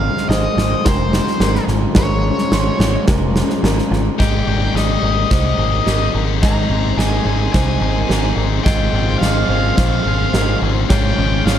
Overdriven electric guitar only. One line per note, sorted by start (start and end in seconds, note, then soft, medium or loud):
0.00 0.29 F5 loud
0.29 0.87 D#5 medium
0.85 1.65 C5 medium
1.97 3.04 C#5 loud
4.19 4.76 G5 medium
4.77 5.30 D#5 medium
5.31 6.11 D#5 medium
6.43 6.98 A#5 medium
6.98 7.50 G#5 medium
7.53 8.33 G#5 medium
8.64 9.19 G5 loud
9.19 9.75 F5 medium
9.76 10.57 F5 medium
10.90 11.45 G5 medium
11.46 11.59 F5 medium